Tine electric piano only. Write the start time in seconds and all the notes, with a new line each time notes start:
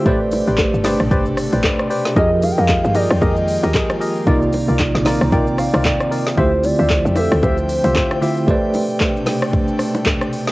0.04 A3 G4 B4 C5
0.09 D5
2.15 F3 F4 G4 G#4 A#4
2.19 D#5
4.25 C3 A#3 D#4 F4
4.30 D5
5.07 A#5
5.33 G5
5.59 F5
5.86 D5
6.36 D3 A3 E4 F4 G4
6.40 C5
8.21 D3 A3 E4 F4 G4 C5
8.46 A3 G4 B4 C5
8.51 D5